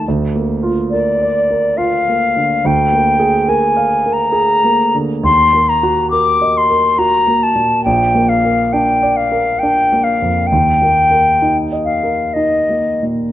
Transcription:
<<
  \new Staff \with { instrumentName = "Flute" } { \time 3/4 \key bes \major \tempo 4 = 68 r4 d''4 f''4 | g''4 aes''8. bes''4~ bes''16 | c'''8 bes''8 d'''8 c'''8 bes''8 a''8 | g''8 f''8 g''8 f''8 g''8 f''8 |
g''4. f''8 ees''8. r16 | }
  \new Staff \with { instrumentName = "Grand piano" } { \time 3/4 \key bes \major \tuplet 3/2 { d,8 bes8 f'8 bes'8 d''8 bes'8 f'8 bes8 d8 } | \tuplet 3/2 { d,8 bes8 aes'8 bes'8 f''8 bes'8 aes'8 bes8 d8 } | \tuplet 3/2 { ees,8 bes8 ges'8 bes'8 ees''8 bes'8 ges'8 bes8 bes,8 } | \tuplet 3/2 { bes,,8 bes8 bes'8 d'8 d''8 bes'8 d'8 bes8 f,8 } |
\tuplet 3/2 { ees,8 bes8 bes'8 ees'8 ees''8 bes'8 ees'8 bes8 bes,8 } | }
>>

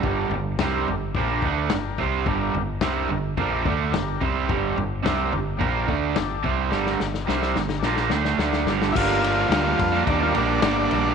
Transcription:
<<
  \new Staff \with { instrumentName = "Transistor combo organ" } { \time 4/4 \key g \minor \tempo 4 = 108 <d' g' bes'>8 r8 <d' g' bes'>8 r8 <d' g' bes'>8 r8 <d' g' bes'>8 r8 | <d' g' bes'>8 r8 <d' g' bes'>8 r8 <d' g' a'>8 r8 <d' g' bes'>8 r8 | <d' g' c''>8 r8 <d' g' bes'>8 r8 <d' g' bes'>8 r8 <d' g' a'>8 r8 | <d' g' bes'>8 r8 <d' g' bes'>8 bes''8 <d' g' bes' a''>8 g''8 <d' g' bes' f''>8 d''8 |
<d' g' bes'>8 r8 <d' g' bes'>8 r8 <d' g' bes'>8 r8 <d' g' bes'>8 r8 | }
  \new Staff \with { instrumentName = "Transistor combo organ" } { \time 4/4 \key g \minor r1 | r1 | r1 | r1 |
<e' f'>2 d'16 f'16 d'8 d'4 | }
  \new Staff \with { instrumentName = "Overdriven electric guitar" } { \clef bass \time 4/4 \key g \minor <g, d g>8 <g, d>8 <c g c'>8 <g, d>8 <bes, f bes>8 <d a d'>8 <g, d>8 <c g c'>8 | <g, d g>8 <g, d>8 <c g c'>8 <g, d>8 <bes, f bes>8 <d a d'>8 <g, d>8 <c g c'>8 | <g, d g>8 <g, d>8 <c g c'>8 <g, d>8 <bes, f bes>8 <d a d'>8 <g, d>8 <c g c'>8 | <g, d g>8 <g, d>8 <c g c'>8 <g, d>8 <bes, f bes>8 <d a d'>8 <d a d'>8 <g, d g>8 |
<g, d g bes d'>8 <d g bes d'>8 <g, d g bes d'>16 <g bes d'>8 <g bes d'>8 <g bes d'>16 <d g bes d'>8 <g, d g bes d'>8 <d g bes d'>16 <g bes d'>16 | }
  \new Staff \with { instrumentName = "Fingered electric bass" } { \clef bass \time 4/4 \key g \minor g,,8 g,,8 c,8 g,,8 bes,,8 d,8 g,,8 c,8 | g,,8 g,,8 c,8 g,,8 bes,,8 d,8 g,,8 c,8 | g,,8 g,,8 c,8 g,,8 bes,,8 d,8 g,,8 c,8 | g,,8 g,,8 c,8 g,,8 bes,,8 d,8 d,8 g,,8 |
g,,4 d,8 f,8 ees,8 bes,,8 g,,8 bes,,8 | }
  \new DrumStaff \with { instrumentName = "Drums" } \drummode { \time 4/4 <bd tomfh>8 tomfh8 <sn tomfh>8 tomfh8 <bd tomfh>8 <bd tomfh>8 <sn tomfh>8 <bd tomfh>8 | <bd tomfh>8 tomfh8 <sn tomfh>8 tomfh8 <bd tomfh>8 <bd tomfh>8 <sn tomfh>8 <bd tomfh>8 | <bd tomfh>8 tomfh8 <sn tomfh>8 tomfh8 <bd tomfh>8 <bd tomfh>8 <sn tomfh>8 <bd tomfh>8 | sn16 sn16 sn16 sn16 sn16 sn16 sn16 sn16 sn16 sn16 sn16 sn16 sn16 sn16 sn16 sn16 |
<cymc bd>8 cymr8 <cymr sn>8 <bd cymr>8 <bd cymr>8 <bd cymr>8 <cymr sn>8 cymr8 | }
>>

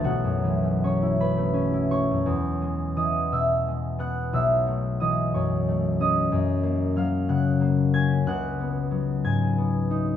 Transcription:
<<
  \new Staff \with { instrumentName = "Harp" } { \time 6/8 \key e \major \tempo 4. = 60 <fis' a' b' cis'' fis'' a'' b''>4 <cis'' cis'''>8 <b' b''>4 <cis'' cis'''>8~ | <cis'' cis'''>4 <dis'' dis'''>8 <e'' e'''>4 <fis'' fis'''>8 | <e'' e'''>4 <dis'' dis'''>8 <cis'' cis'''>4 <dis'' dis'''>8~ | <dis'' dis'''>4 <f'' f'''>8 <fis'' fis'''>4 <gis'' gis'''>8 |
<fis'' fis'''>4. <gis'' gis'''>4. | }
  \new Staff \with { instrumentName = "Harp" } { \time 6/8 \key e \major <b,, a b e'>16 fis,16 e16 a16 cis'16 e'16 cis'16 a16 cis'16 e'16 a16 fis,16 | e,8 gis8 e8 b,8 gis8 b8 | b,,8 a8 e8 fis,8 a8 cis'8 | fis,8 ais8 fis8 cis8 ais8 cis'8 |
cis,8 b8 fis8 gis,8 b8 dis'8 | }
>>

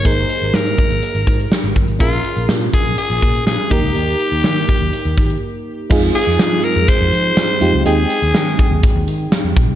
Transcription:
<<
  \new Staff \with { instrumentName = "Alto saxophone" } { \time 4/4 \key aes \major \tempo 4 = 123 c''4 bes'2~ bes'8 r8 | f'4 r8 aes'8 aes'4 aes'8 g'8~ | g'2. r4 | r8 aes'4 bes'8 c''2 |
aes'2 r2 | }
  \new Staff \with { instrumentName = "FM electric piano" } { \time 4/4 \key aes \major <bes ees' aes' bes'>1 | <des' f' aes' bes'>2.~ <des' f' aes' bes'>8 <bes ees' g' bes'>8~ | <bes ees' g' bes'>2.~ <bes ees' g' bes'>8 r8 | <aes c' ees' f' aes'>2.~ <aes c' ees' f' aes'>8 <aes c' ees' f' g'>8 |
<aes c' ees' aes' g''>1 | }
  \new Staff \with { instrumentName = "Picked electric bass" } { \clef bass \time 4/4 \key aes \major aes,,8 r16 aes,,16 aes,8 r16 aes,,16 r16 aes,,16 aes,8 r16 aes,,16 g,,16 aes,,16 | bes,,8 r16 bes,,16 bes,8 r16 bes,,16 r16 bes,,16 bes,8 bes,16 r16 ees,16 des,16 | ees,8 r16 ees,16 ees8 r16 ees,16 r16 ees,16 ees8 r4 | f,8 r16 f,16 f8 r16 f,16 r16 f,16 f8 f16 r16 f,16 des,16 |
ees,8 r16 ees,16 ees8 r16 ees,16 r16 ees,16 ees8 r16 f,16 bes,,16 c,16 | }
  \new DrumStaff \with { instrumentName = "Drums" } \drummode { \time 4/4 <hh bd>16 hh16 hh16 hh16 sn16 hh16 <hh bd>16 hh16 hh16 hh16 <hh bd>16 hh16 sn16 hh16 <hh bd>16 hh16 | <hh bd>16 hh16 hh16 hh16 sn16 hh16 <hh bd>16 hh16 hh16 hh16 <hh bd>16 hh16 sn16 hh16 <hh bd>16 hh16 | hh16 hh16 hh16 hh16 sn16 hh16 <hh bd>16 hh16 hh16 hh16 <hh bd>16 hh16 r4 | <cymc bd>8 hh8 <hh sn tamb>8 hh8 <hh bd>8 hh8 <hh sn tamb>8 hh8 |
hh8 hh16 hh16 <hh sn tamb>8 <hh bd>8 <hh bd>8 hh8 <hh sn tamb>8 <hh bd>8 | }
>>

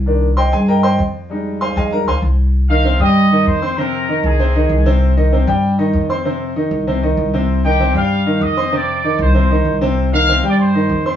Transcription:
<<
  \new Staff \with { instrumentName = "Trumpet section" } { \time 4/4 \key c \minor \tempo 4 = 194 r1 | r1 | r8 f''4 <ees'' ees'''>4. <c'' c'''>4 | <bes' bes''>4. <aes' aes''>2 r8 |
r1 | r1 | r8 <g' g''>4 f''4. <ees'' ees'''>4 | <d'' d'''>4. <c'' c'''>2 r8 |
r8 f''8~ \tuplet 3/2 { f''8. r16 <d'' d'''>8 } <c'' c'''>4. <c'' c'''>8 | }
  \new Staff \with { instrumentName = "Grand piano" } { \time 4/4 \key c \minor r4 <c'' ees'' g'' c'''>8 <aes' aes''>8 <bes' ees'' g'' bes''>8 <c'' ees'' g'' c'''>8 r4 | r4 <c'' f'' aes'' c'''>8 <aes' ees'' f'' aes''>8 <bes' bes''>8 <c'' f'' aes'' c'''>8 r4 | r8 <ees ees' ees''>8 <c c' c''>8 <g g' g''>4 <ees ees' ees''>4 <c' c'' c'''>8 | <c c' c''>4 <ees ees' ees''>4 <c c' c''>8 <ees ees' ees''>4 <c c' c''>8~ |
<c c' c''>8 <ees ees' ees''>8 <c c' c''>8 <g g' g''>4 <ees ees' ees''>4 <c' c'' c'''>8 | <c c' c''>4 <ees ees' ees''>4 <c c' c''>8 <ees ees' ees''>4 <c c' c''>8~ | <c c' c''>8 <ees ees' ees''>8 <c c' c''>8 <g g' g''>4 <ees ees' ees''>4 <c' c'' c'''>8 | <c c' c''>4 <ees ees' ees''>4 <c c' c''>8 <ees ees' ees''>4 <c c' c''>8~ |
<c c' c''>8 <ees ees' ees''>8 <c c' c''>8 <g g' g''>4 <ees ees' ees''>4 <c' c'' c'''>8 | }
  \new Staff \with { instrumentName = "Grand piano" } { \clef bass \time 4/4 \key c \minor <ees bes d'>8 r2. r8 | <g aes ees'>2 <g aes ees'>8 r4. | r1 | r1 |
r1 | r1 | r1 | r1 |
r1 | }
  \new Staff \with { instrumentName = "Upright bass" } { \clef bass \time 4/4 \key c \minor c,4. g,4. f,4~ | f,4. f,4 d,8 c,4~ | c,4. g,4. f,4~ | f,4. c,4. c,4~ |
c,4. g,4. f,4~ | f,4. c,4. c,4~ | c,4. g,4. f,4~ | f,4. c,4. c,4~ |
c,4. g,4. f,4 | }
>>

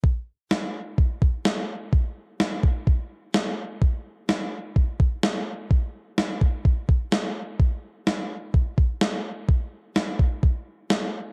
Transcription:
\new DrumStaff \with { instrumentName = "Drums" } \drummode { \time 4/4 \tempo 4 = 127 bd4 sn4 bd8 bd8 sn4 | bd4 sn8 bd8 bd4 sn4 | bd4 sn4 bd8 bd8 sn4 | bd4 sn8 bd8 bd8 bd8 sn4 |
bd4 sn4 bd8 bd8 sn4 | bd4 sn8 bd8 bd4 sn4 | }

